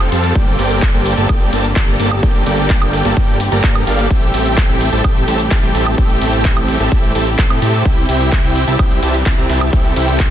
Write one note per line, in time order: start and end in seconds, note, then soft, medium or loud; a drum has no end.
0.00 0.10 F1 loud
0.00 0.32 C3 medium
0.00 0.32 G3 medium
0.00 4.06 C4 medium
0.00 0.09 C4 medium
0.00 0.32 F4 medium
0.00 0.09 G4 medium
0.00 0.34 A4 medium
0.00 0.09 A4 medium
0.00 0.09 F5 medium
0.00 0.09 G5 medium
0.00 closed hi-hat soft
0.00 high woodblock medium
0.12 0.33 F2 loud
0.12 0.33 C4 medium
0.12 0.33 G4 medium
0.12 0.33 A4 medium
0.12 0.33 F5 medium
0.12 0.33 A5 loud
0.12 open hi-hat loud
0.12 ride medium
0.24 closed hi-hat medium
0.35 0.57 G1 loud
0.35 4.07 D3 medium
0.35 7.82 G3 medium
0.35 0.56 A#3 medium
0.35 4.07 A#3 medium
0.35 0.56 G4 medium
0.35 9.69 G4 medium
0.35 0.56 D5 medium
0.35 kick loud
0.35 closed hi-hat medium
0.35 ride medium
0.59 0.92 G1 loud
0.59 0.91 A#3 loud
0.59 0.91 G4 medium
0.59 0.91 A4 medium
0.59 0.91 D5 medium
0.59 0.91 G5 loud
0.59 open hi-hat loud
0.59 ride medium
0.71 closed hi-hat medium
0.82 kick loud
0.82 clap loud
0.82 closed hi-hat medium
0.82 ride medium
0.94 1.15 G1 loud
0.94 1.14 A#3 loud
0.94 1.14 G4 medium
0.94 1.14 A4 medium
0.94 1.14 D5 medium
0.94 1.14 G5 loud
1.06 open hi-hat loud
1.06 ride medium
1.17 1.27 G1 loud
1.17 1.26 A#3 loud
1.17 1.26 G4 loud
1.17 1.26 A4 loud
1.17 1.26 D5 medium
1.17 1.26 A5 loud
1.17 closed hi-hat medium
1.29 1.50 G1 loud
1.29 1.50 G4 medium
1.29 1.50 A4 medium
1.29 kick loud
1.29 closed hi-hat medium
1.29 high woodblock medium
1.41 closed hi-hat soft
1.53 1.74 G1 loud
1.53 1.65 A#3 medium
1.53 1.65 G4 medium
1.53 1.65 A4 medium
1.53 1.65 D5 medium
1.53 1.65 A5 loud
1.53 open hi-hat loud
1.53 ride medium
1.64 closed hi-hat medium
1.76 1.85 G1 loud
1.76 1.85 A#3 medium
1.76 1.85 G4 medium
1.76 1.85 A4 medium
1.76 1.85 D5 medium
1.76 1.85 A5 medium
1.76 kick loud
1.76 clap loud
1.76 closed hi-hat medium
1.76 ride medium
1.88 1.97 G1 loud
1.88 1.97 A#3 medium
1.88 1.97 G4 medium
1.88 1.97 A4 medium
1.88 1.97 D5 medium
1.88 1.97 A#5 medium
1.88 closed hi-hat soft
2.00 2.21 G1 loud
2.00 2.20 A#3 medium
2.00 2.20 G4 medium
2.00 2.20 A4 medium
2.00 2.20 D5 medium
2.00 2.20 A5 loud
2.00 open hi-hat loud
2.00 ride medium
2.11 closed hi-hat medium
2.11 high woodblock medium
2.23 2.44 G1 loud
2.23 2.44 A#3 medium
2.23 2.44 G4 medium
2.23 2.44 A4 medium
2.23 2.44 D5 medium
2.23 2.44 G5 loud
2.23 kick loud
2.23 closed hi-hat medium
2.23 ride medium
2.35 closed hi-hat soft
2.46 2.79 G1 loud
2.46 2.79 A#3 loud
2.46 2.79 G4 medium
2.46 2.79 A4 medium
2.46 2.79 D5 medium
2.46 2.79 G5 loud
2.46 open hi-hat loud
2.46 ride medium
2.58 closed hi-hat medium
2.70 kick loud
2.70 clap loud
2.70 closed hi-hat medium
2.70 ride medium
2.82 3.03 G1 medium
2.82 3.02 A#3 loud
2.82 3.02 G4 loud
2.82 3.02 A4 medium
2.82 3.02 D5 medium
2.82 3.02 G5 loud
2.82 high woodblock medium
2.93 open hi-hat medium
2.93 ride medium
3.05 3.14 G1 loud
3.05 3.14 A#3 loud
3.05 3.14 G4 medium
3.05 3.14 A4 loud
3.05 3.14 D5 medium
3.05 3.14 A5 loud
3.05 closed hi-hat soft
3.17 3.50 G1 loud
3.17 3.37 A#3 medium
3.17 3.37 A4 medium
3.17 kick loud
3.17 closed hi-hat medium
3.17 ride medium
3.28 closed hi-hat soft
3.40 open hi-hat loud
3.40 ride medium
3.52 3.61 G1 loud
3.52 3.62 A#3 loud
3.52 3.62 G4 medium
3.52 3.62 A4 medium
3.52 3.62 D5 medium
3.52 3.62 A#5 loud
3.52 closed hi-hat medium
3.64 3.85 G2 loud
3.64 3.84 A#3 loud
3.64 3.84 G4 medium
3.64 3.84 A4 medium
3.64 3.84 D5 medium
3.64 3.84 A#5 loud
3.64 kick loud
3.64 clap loud
3.64 closed hi-hat medium
3.64 ride medium
3.75 closed hi-hat soft
3.75 high woodblock medium
3.87 4.08 G1 loud
3.87 4.07 A#3 loud
3.87 4.07 G4 medium
3.87 4.07 A4 medium
3.87 4.07 D5 medium
3.87 4.07 F5 loud
3.87 open hi-hat loud
3.87 ride medium
3.99 closed hi-hat soft
4.11 4.32 A1 loud
4.11 10.30 C3 medium
4.11 7.82 A3 medium
4.11 4.31 C4 medium
4.11 10.30 E4 medium
4.11 4.31 G4 medium
4.11 4.31 E5 medium
4.11 4.31 G5 loud
4.11 kick loud
4.11 closed hi-hat medium
4.11 ride medium
4.34 4.67 A1 loud
4.34 4.66 C4 loud
4.34 4.66 G4 medium
4.34 4.66 A4 medium
4.34 4.66 E5 medium
4.34 4.66 G5 loud
4.34 open hi-hat loud
4.34 ride medium
4.46 closed hi-hat medium
4.57 kick loud
4.57 clap loud
4.57 closed hi-hat medium
4.57 ride medium
4.69 4.90 A1 loud
4.69 4.89 C4 loud
4.69 4.89 G4 medium
4.69 4.89 A4 medium
4.69 4.89 E5 medium
4.69 4.89 G5 loud
4.81 open hi-hat medium
4.81 ride medium
4.93 5.02 A1 loud
4.93 5.01 C4 loud
4.93 5.01 G4 medium
4.93 5.01 A4 medium
4.93 5.01 E5 medium
4.93 5.01 A5 loud
4.93 closed hi-hat soft
5.04 5.25 A1 loud
5.04 5.25 C4 medium
5.04 kick loud
5.04 closed hi-hat medium
5.04 ride medium
5.04 high woodblock medium
5.16 closed hi-hat soft
5.28 5.49 A1 loud
5.28 5.40 C4 medium
5.28 5.40 G4 medium
5.28 5.40 A4 medium
5.28 5.40 E5 medium
5.28 5.40 A5 loud
5.28 open hi-hat loud
5.28 ride medium
5.40 closed hi-hat medium
5.51 5.61 A1 loud
5.51 5.60 C4 medium
5.51 5.60 G4 medium
5.51 5.60 A4 medium
5.51 5.60 E5 medium
5.51 5.60 A5 medium
5.51 kick loud
5.51 clap loud
5.51 closed hi-hat medium
5.51 ride medium
5.63 5.72 A1 loud
5.63 5.72 C4 medium
5.63 5.72 G4 medium
5.63 5.72 A4 medium
5.63 5.72 E5 medium
5.63 5.72 G5 medium
5.63 closed hi-hat soft
5.75 5.96 A1 loud
5.75 5.95 C4 medium
5.75 5.95 G4 medium
5.75 5.95 A4 medium
5.75 5.95 E5 medium
5.75 5.95 A5 loud
5.75 open hi-hat medium
5.75 ride medium
5.87 closed hi-hat medium
5.87 high woodblock medium
5.98 6.19 A1 loud
5.98 6.19 C4 medium
5.98 6.19 G4 medium
5.98 6.19 A4 medium
5.98 6.19 E5 medium
5.98 6.19 G5 loud
5.98 kick loud
5.98 closed hi-hat medium
5.98 ride medium
6.10 closed hi-hat soft
6.21 6.54 A1 loud
6.21 6.54 C4 loud
6.21 6.54 G4 medium
6.21 6.54 A4 medium
6.21 6.54 E5 medium
6.21 6.54 G5 loud
6.21 open hi-hat loud
6.21 ride medium
6.33 closed hi-hat medium
6.45 kick loud
6.45 clap loud
6.45 closed hi-hat medium
6.45 ride medium
6.57 6.78 A1 loud
6.57 6.77 C4 loud
6.57 6.77 G4 medium
6.57 6.77 A4 loud
6.57 6.77 E5 medium
6.57 6.77 G5 loud
6.57 high woodblock medium
6.68 open hi-hat medium
6.68 ride medium
6.80 6.89 A1 medium
6.80 6.89 C4 loud
6.80 6.89 G4 medium
6.80 6.89 A4 medium
6.80 6.89 E5 medium
6.80 6.89 A5 loud
6.80 closed hi-hat soft
6.92 7.13 A1 loud
6.92 7.12 C4 medium
6.92 7.12 G4 medium
6.92 7.12 A4 medium
6.92 7.12 G5 loud
6.92 kick loud
6.92 closed hi-hat medium
6.92 ride medium
7.04 closed hi-hat soft
7.15 7.36 A1 loud
7.15 7.28 C4 medium
7.15 7.28 G4 medium
7.15 7.28 A4 medium
7.15 7.28 E5 medium
7.15 7.28 A5 loud
7.15 open hi-hat loud
7.15 ride medium
7.27 closed hi-hat medium
7.39 7.48 A1 loud
7.39 7.48 C4 medium
7.39 7.48 A4 medium
7.39 7.48 E5 medium
7.39 7.48 A5 medium
7.39 kick loud
7.39 clap loud
7.39 closed hi-hat medium
7.39 ride medium
7.50 7.60 A2 loud
7.50 7.59 C4 medium
7.50 7.59 G4 medium
7.50 7.59 A4 medium
7.50 7.59 E5 medium
7.50 7.59 G5 medium
7.50 closed hi-hat soft
7.50 high woodblock medium
7.62 7.83 A2 loud
7.62 7.83 C4 medium
7.62 7.83 G4 medium
7.62 7.83 A4 medium
7.62 7.83 E5 medium
7.62 7.83 A5 loud
7.62 open hi-hat medium
7.62 ride medium
7.74 closed hi-hat medium
7.85 8.07 C2 loud
7.85 10.30 E3 medium
7.85 10.30 G3 medium
7.85 8.06 C4 medium
7.85 8.06 E4 medium
7.85 kick loud
7.85 closed hi-hat medium
7.85 ride medium
8.09 8.42 C2 medium
8.09 8.41 C4 loud
8.09 8.41 E4 medium
8.09 8.41 G4 medium
8.09 8.41 E5 medium
8.09 8.41 G5 loud
8.09 open hi-hat loud
8.09 ride medium
8.21 closed hi-hat medium
8.32 kick loud
8.32 clap loud
8.32 closed hi-hat medium
8.32 ride medium
8.44 8.65 C2 loud
8.44 8.64 C4 loud
8.44 8.64 E4 loud
8.44 8.64 G4 loud
8.44 8.64 E5 medium
8.44 8.64 G5 loud
8.56 open hi-hat medium
8.56 ride medium
8.67 8.77 C2 medium
8.67 8.76 C4 loud
8.67 8.76 E4 medium
8.67 8.76 G4 medium
8.67 8.76 E5 medium
8.67 8.76 A5 loud
8.67 closed hi-hat medium
8.79 9.00 C2 loud
8.79 9.00 C4 medium
8.79 9.00 E4 medium
8.79 9.00 G4 medium
8.79 9.00 E5 medium
8.79 9.00 G5 loud
8.79 kick loud
8.79 closed hi-hat medium
8.79 high woodblock medium
8.91 closed hi-hat soft
9.03 9.24 C2 loud
9.03 9.15 C4 medium
9.03 9.15 E4 medium
9.03 9.15 G4 medium
9.03 9.15 E5 medium
9.03 9.15 A5 loud
9.03 open hi-hat loud
9.03 ride medium
9.15 closed hi-hat medium
9.26 9.35 C2 loud
9.26 9.35 C4 medium
9.26 9.35 E4 medium
9.26 9.35 G4 medium
9.26 9.35 E5 medium
9.26 9.35 A5 medium
9.26 kick loud
9.26 clap loud
9.26 closed hi-hat medium
9.26 ride medium
9.38 9.47 C2 loud
9.38 9.47 C4 medium
9.38 9.47 E4 medium
9.38 9.47 G4 medium
9.38 9.47 E5 medium
9.38 9.47 A#5 medium
9.38 closed hi-hat soft
9.49 9.71 C2 loud
9.49 9.70 C4 medium
9.49 9.70 E4 medium
9.49 9.70 G4 medium
9.49 9.70 E5 medium
9.49 9.70 A5 loud
9.49 open hi-hat medium
9.49 ride medium
9.61 closed hi-hat medium
9.61 high woodblock medium
9.73 9.94 C2 loud
9.73 9.94 C4 medium
9.73 9.94 E4 medium
9.73 9.94 G4 medium
9.73 10.30 A4 medium
9.73 9.94 G5 loud
9.73 kick loud
9.73 closed hi-hat medium
9.73 ride medium
9.85 closed hi-hat soft
9.96 10.29 C2 loud
9.96 10.29 C4 loud
9.96 10.29 E4 medium
9.96 10.29 G4 medium
9.96 10.29 E5 medium
9.96 10.29 G5 loud
9.96 open hi-hat loud
9.96 ride medium
10.08 closed hi-hat medium
10.20 kick loud
10.20 clap loud
10.20 closed hi-hat medium
10.20 ride medium